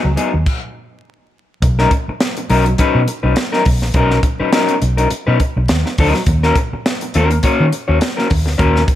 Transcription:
0.04 fingered electric bass C#2, muted clean electric guitar stroke
0.16 clean electric guitar F#3 B3 D#4 G#4, closed hi-hat
0.33 fingered electric bass D#2, muted clean electric guitar stroke
0.46 kick, crash
1.62 fingered electric bass B1, muted clean electric guitar stroke, kick, closed hi-hat
1.79 clean electric guitar F#3 C#4 D#4 A#4, snare
1.91 muted clean electric guitar stroke, kick, closed hi-hat
2.08 muted fingered electric bass stroke, muted clean electric guitar stroke
2.20 snare, closed hi-hat
2.37 muted clean electric guitar stroke, closed hi-hat
2.50 fingered electric bass B1, clean electric guitar F#3 C#4 D#4 A#4, open hi-hat
2.66 muted clean electric guitar stroke, closed hi-hat
2.78 clean electric guitar F#3 C#4 D#4 B4, muted fingered electric bass stroke, kick, closed hi-hat
2.95 fingered electric bass B2
3.08 muted clean electric guitar stroke, closed hi-hat
3.23 fingered electric bass B1, clean electric guitar F#3 C#4 D#4 B4
3.36 muted clean electric guitar stroke, snare, closed hi-hat
3.52 clean electric guitar F#3 C#4 D#4 A#4, snare
3.65 fingered electric bass B1, muted clean electric guitar stroke, kick, open hi-hat
3.82 fingered electric bass A#1, muted clean electric guitar stroke, snare
3.94 fingered electric bass B1, clean electric guitar F#3 C#4 D#4 A#4, kick, closed hi-hat
4.11 snare
4.23 muted clean electric guitar stroke, kick, closed hi-hat
4.40 clean electric guitar F#3 C#4 D#4 B4, muted fingered electric bass stroke
4.53 clean electric guitar F#3 C#4 D#4 A#4, snare, closed hi-hat
4.68 closed hi-hat
4.81 fingered electric bass B1, muted clean electric guitar stroke, closed hi-hat
4.97 clean electric guitar F#3 C#4 D#4 A#4, closed hi-hat
5.10 muted clean electric guitar stroke, muted fingered electric bass stroke, closed hi-hat
5.27 fingered electric bass B2, clean electric guitar F#3 C#4 D#4 B4
5.40 muted clean electric guitar stroke, kick, closed hi-hat
5.56 fingered electric bass B1, muted clean electric guitar stroke
5.68 fingered electric bass D#2, snare, closed hi-hat
5.86 muted clean electric guitar stroke, snare
5.98 fingered electric bass D2, clean electric guitar F#3 C#4 D#4 A#4, kick, open hi-hat
6.14 muted clean electric guitar stroke, snare
6.26 fingered electric bass D#2, muted clean electric guitar stroke, kick, closed hi-hat
6.43 clean electric guitar A#3 C#4 F#4 A#4, snare
6.56 muted clean electric guitar stroke, kick, closed hi-hat
6.73 muted fingered electric bass stroke, muted clean electric guitar stroke
6.86 snare, closed hi-hat
7.01 muted clean electric guitar stroke, closed hi-hat
7.14 fingered electric bass D#2, clean electric guitar A#3 C#4 F#4 A#4, closed hi-hat
7.31 muted clean electric guitar stroke, closed hi-hat
7.43 clean electric guitar A#3 C#4 F#4 C#5, muted fingered electric bass stroke, kick, closed hi-hat
7.60 fingered electric bass D#3
7.72 muted clean electric guitar stroke, closed hi-hat
7.88 fingered electric bass D#2, clean electric guitar A#3 C#4 F#4 C#5
8.01 muted clean electric guitar stroke, snare, closed hi-hat
8.17 clean electric guitar A#3 C#4 F#4 A#4, snare
8.30 fingered electric bass D#2, muted clean electric guitar stroke, kick, open hi-hat
8.46 fingered electric bass D2, muted clean electric guitar stroke, snare
8.58 fingered electric bass D#2, clean electric guitar A#3 C#4 F#4 A#4, kick, closed hi-hat
8.76 snare
8.87 muted clean electric guitar stroke, kick, closed hi-hat

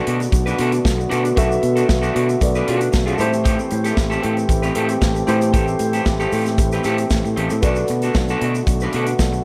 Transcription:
Already playing: french horn section D3 A3 B3 F#4, grand piano B3 F#4 A4 D5
0.07 fingered electric bass B2, clean electric guitar D4 F#4 A4, closed hi-hat
0.20 muted clean electric guitar stroke, closed hi-hat, shaker
0.32 fingered electric bass B1, muted clean electric guitar stroke, kick, closed hi-hat, shaker
0.46 clean electric guitar D4 F#4 B4, closed hi-hat, shaker
0.59 fingered electric bass B2, clean electric guitar D4 F#4 A4, closed hi-hat
0.72 muted clean electric guitar stroke, closed hi-hat, shaker
0.85 fingered electric bass B1, muted clean electric guitar stroke, kick, snare, shaker
0.98 muted clean electric guitar stroke, shaker
1.10 fingered electric bass B2, clean electric guitar D4 F#4 A4, closed hi-hat, shaker
1.24 muted clean electric guitar stroke, closed hi-hat, shaker
1.35 fingered electric bass B1, grand piano B3 F#4 A4 E5, clean electric guitar D4 F#4 A4, kick, closed hi-hat, shaker
1.50 muted clean electric guitar stroke, shaker
1.62 fingered electric bass B2, muted clean electric guitar stroke, closed hi-hat, shaker
1.76 clean electric guitar D4 F#4 A4, closed hi-hat, shaker
1.88 fingered electric bass B1, muted clean electric guitar stroke, kick, snare, shaker
2.02 clean electric guitar D4 F#4 A4, shaker
2.14 fingered electric bass B2, clean electric guitar D4 F#4 A4, closed hi-hat
2.29 muted clean electric guitar stroke, closed hi-hat, shaker
2.41 fingered electric bass B1, grand piano B3 F#4 A4 D5, muted clean electric guitar stroke, kick, closed hi-hat, shaker
2.55 clean electric guitar D4 F#4 B4, shaker
2.67 fingered electric bass B2, clean electric guitar D4 F#4 A4, closed hi-hat
2.81 muted clean electric guitar stroke, closed hi-hat, shaker
2.92 fingered electric bass B1, muted clean electric guitar stroke, kick, snare, shaker
3.06 clean electric guitar D4 F#4 A4, closed hi-hat, shaker
3.17 fingered electric bass A2, french horn section E3 C4 G4, grand piano A3 E4 G4 C5, clean electric guitar C4 G4 A4, closed hi-hat, shaker
3.33 muted clean electric guitar stroke, closed hi-hat, shaker
3.44 clean electric guitar C4 G4 A4, kick, closed hi-hat, shaker
3.58 muted clean electric guitar stroke, shaker
3.71 fingered electric bass A2, muted clean electric guitar stroke, closed hi-hat, shaker
3.84 clean electric guitar C4 G4 A4, closed hi-hat, shaker
3.97 fingered electric bass A1, muted clean electric guitar stroke, kick, snare, shaker
4.10 clean electric guitar C4 G4 A4, shaker
4.22 fingered electric bass A2, clean electric guitar C4 G4 A4, closed hi-hat
4.37 muted clean electric guitar stroke, closed hi-hat, shaker
4.49 fingered electric bass A1, muted clean electric guitar stroke, kick, closed hi-hat, shaker
4.62 clean electric guitar C4 G4 B4, closed hi-hat, shaker
4.75 fingered electric bass A2, clean electric guitar C4 G4 A4, closed hi-hat
4.89 muted clean electric guitar stroke, closed hi-hat, shaker
5.01 fingered electric bass A1, muted clean electric guitar stroke, kick, snare, shaker
5.15 muted clean electric guitar stroke, shaker
5.26 fingered electric bass A2, grand piano A3 E4 G4 C5, clean electric guitar C4 G4 A4, closed hi-hat, shaker
5.41 muted clean electric guitar stroke, closed hi-hat, shaker
5.53 fingered electric bass A1, clean electric guitar C4 G4 A4, kick, closed hi-hat, shaker
5.67 muted clean electric guitar stroke, shaker
5.79 fingered electric bass A2, muted clean electric guitar stroke, closed hi-hat, shaker
5.93 clean electric guitar C4 G4 A4, closed hi-hat, shaker
6.06 fingered electric bass A1, muted clean electric guitar stroke, kick, snare, shaker
6.20 clean electric guitar C4 G4 A4, shaker
6.32 fingered electric bass A2, clean electric guitar C4 G4 A4, open hi-hat, shaker
6.46 muted clean electric guitar stroke, snare, closed hi-hat, shaker
6.58 fingered electric bass A1, muted clean electric guitar stroke, kick, closed hi-hat, shaker
6.72 clean electric guitar C4 G4 B4, closed hi-hat, shaker
6.84 fingered electric bass A2, clean electric guitar C4 G4 A4, closed hi-hat, shaker
6.98 muted clean electric guitar stroke, closed hi-hat, shaker
7.10 fingered electric bass A1, muted clean electric guitar stroke, kick, snare, shaker
7.25 fingered electric bass A2, muted clean electric guitar stroke, shaker
7.37 fingered electric bass A1, clean electric guitar C4 G4 A4, closed hi-hat
7.50 fingered electric bass A2, muted clean electric guitar stroke, closed hi-hat, shaker
7.61 fingered electric bass B1, french horn section D3 B3 F#4, grand piano B3 F#4 A4 D5, clean electric guitar D4 F#4, kick, closed hi-hat, shaker
7.65 clean electric guitar A4
7.76 muted clean electric guitar stroke, shaker
7.88 fingered electric bass B2, muted clean electric guitar stroke, closed hi-hat, shaker
8.02 clean electric guitar D4 F#4 A4, closed hi-hat, shaker
8.14 fingered electric bass B1, muted clean electric guitar stroke, kick, snare, shaker
8.28 clean electric guitar D4 F#4 A4, shaker
8.41 fingered electric bass B2, clean electric guitar D4 F#4 A4, closed hi-hat
8.55 muted clean electric guitar stroke, closed hi-hat, shaker
8.67 fingered electric bass B1, muted clean electric guitar stroke, kick, closed hi-hat, shaker
8.80 clean electric guitar D4 F#4 B4, shaker
8.93 fingered electric bass B2, clean electric guitar D4 F#4 A4, closed hi-hat
9.07 muted clean electric guitar stroke, closed hi-hat, shaker
9.19 fingered electric bass B1, muted clean electric guitar stroke, kick, snare, shaker
9.33 muted clean electric guitar stroke, shaker

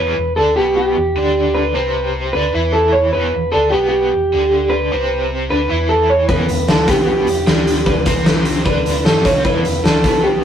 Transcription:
Already playing: fingered electric bass E1, overdriven electric guitar E2 E3, clean electric guitar B4
0.17 fingered electric bass E1, overdriven electric guitar E2
0.36 fingered electric bass D2, overdriven electric guitar D3 D4, clean electric guitar A4
0.56 fingered electric bass B1, overdriven electric guitar B2 B3, clean electric guitar G4
0.77 clean electric guitar G4
0.96 fingered electric bass E1, overdriven electric guitar E2
1.15 fingered electric bass D2, overdriven electric guitar D3 D4
1.55 clean electric guitar B4
1.74 fingered electric bass C2, overdriven electric guitar C3 C4
2.33 fingered electric bass D2, overdriven electric guitar D3 D4, clean electric guitar B4
2.54 fingered electric bass E2, overdriven electric guitar E3 E4
2.73 clean electric guitar A4
2.92 clean electric guitar C#5
3.13 fingered electric bass E1, overdriven electric guitar E2 E3, clean electric guitar B4
3.33 fingered electric bass E1, overdriven electric guitar E2
3.52 fingered electric bass D2, overdriven electric guitar D3 D4, clean electric guitar A4
3.70 fingered electric bass B1, overdriven electric guitar B2 B3, clean electric guitar G4
3.89 clean electric guitar G4
4.12 fingered electric bass E1, overdriven electric guitar E2
4.33 fingered electric bass D2, overdriven electric guitar D3 D4
4.70 clean electric guitar B4
4.92 fingered electric bass C2, overdriven electric guitar C3 C4
5.50 fingered electric bass D2, overdriven electric guitar D3 D4, clean electric guitar B4
5.69 fingered electric bass E2, overdriven electric guitar E3 E4
5.89 clean electric guitar A4
6.10 clean electric guitar C#5
6.28 fingered electric bass E1, overdriven electric guitar E2 E3, clean electric guitar B4, kick
6.49 fingered electric bass E1, overdriven electric guitar E2, closed hi-hat
6.68 fingered electric bass D2, overdriven electric guitar D3 D4, clean electric guitar A4, snare
6.88 fingered electric bass B1, overdriven electric guitar B2 B3, clean electric guitar G4, kick, closed hi-hat
7.08 clean electric guitar G4
7.27 fingered electric bass E1, overdriven electric guitar E2, closed hi-hat
7.47 fingered electric bass D2, overdriven electric guitar D3 D4, snare
7.67 closed hi-hat
7.86 clean electric guitar B4, kick
8.06 fingered electric bass C2, overdriven electric guitar C3 C4, kick, closed hi-hat
8.26 snare
8.45 closed hi-hat
8.65 fingered electric bass D2, overdriven electric guitar D3 D4, clean electric guitar B4, kick
8.86 closed hi-hat
9.05 fingered electric bass G1, overdriven electric guitar G2 G3, clean electric guitar A4, snare
9.25 fingered electric bass C2, overdriven electric guitar C3 C4, clean electric guitar C#5, kick, closed hi-hat
9.45 fingered electric bass E1, overdriven electric guitar E2 E3, clean electric guitar B4, kick
9.65 fingered electric bass E1, overdriven electric guitar E2, closed hi-hat
9.84 fingered electric bass D2, overdriven electric guitar D3 D4, clean electric guitar A4, snare
10.04 fingered electric bass B1, overdriven electric guitar B2 B3, kick, closed hi-hat
10.24 clean electric guitar G4

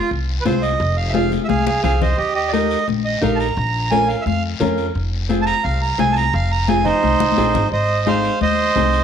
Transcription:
Already playing: accordion F4
0.11 upright bass C2, long guiro
0.41 nylon-string guitar C4, accordion B4
0.45 upright bass C2, nylon-string guitar F4 G#4, accordion C5, high conga, short guiro
0.62 accordion D#5, short guiro
0.80 upright bass F1, long guiro
0.97 accordion F5
1.09 accordion E5
1.13 nylon-string guitar C4 F4 G#4, accordion F5, high conga, short guiro
1.32 high conga, short guiro
1.44 accordion G#4 E5 F5
1.49 upright bass C2, high conga, long guiro
1.66 accordion G#4 F5, high conga
1.83 upright bass C2, nylon-string guitar C4 F4 G#4, accordion G#4 F5, low conga, short guiro
2.01 accordion C5 D#5, low conga, short guiro
2.18 upright bass D#2, accordion G4 D#5, long guiro
2.35 accordion G4 D#5
2.48 accordion D5
2.53 nylon-string guitar D#4 G4 A#4, accordion D#5, high conga, short guiro
2.71 short guiro
2.88 upright bass A#1, high conga, long guiro
3.05 accordion D#5
3.21 upright bass A#1, nylon-string guitar D#4 G4 A#4, accordion F5, high conga, short guiro
3.36 accordion A5
3.40 accordion A#5, short guiro
3.57 upright bass A#1, long guiro
3.91 nylon-string guitar C#4 F4 A#4, accordion G#5, high conga, short guiro
4.08 accordion F5, short guiro
4.21 accordion E5
4.26 upright bass F2, accordion F5, high conga, long guiro
4.60 upright bass F2, nylon-string guitar C#4 F4 A#4, high conga, low conga, short guiro
4.78 short guiro
4.95 upright bass F1, long guiro
5.29 nylon-string guitar C4 F4 G#4, high conga, short guiro
5.42 accordion A5
5.46 accordion A#5, short guiro
5.64 upright bass C2, accordion F5, long guiro
5.82 accordion A#5
5.98 upright bass C2, nylon-string guitar C4 F4 G#4, accordion G#5, high conga, short guiro
6.12 accordion A5, short guiro
6.17 accordion A#5
6.33 upright bass F1, accordion F5, long guiro
6.51 accordion A#5
6.68 nylon-string guitar C4 F4 G#4, accordion G#5, high conga, short guiro
6.84 accordion D#4 C5, low conga, short guiro
7.03 upright bass C2, high conga, long guiro
7.20 upright bass C2, high conga
7.32 high conga
7.37 upright bass A#1, nylon-string guitar C4 F4 G#4, short guiro
7.54 upright bass G#1, low conga, short guiro
7.72 upright bass G#1, accordion C5 D#5, long guiro
8.06 nylon-string guitar C4 D#4 G#4, accordion C5 F5, high conga, short guiro
8.24 short guiro
8.41 upright bass D#2, accordion C5 D#5, high conga, long guiro
8.76 upright bass C2, nylon-string guitar C4 D#4 G#4, high conga, short guiro
8.93 short guiro

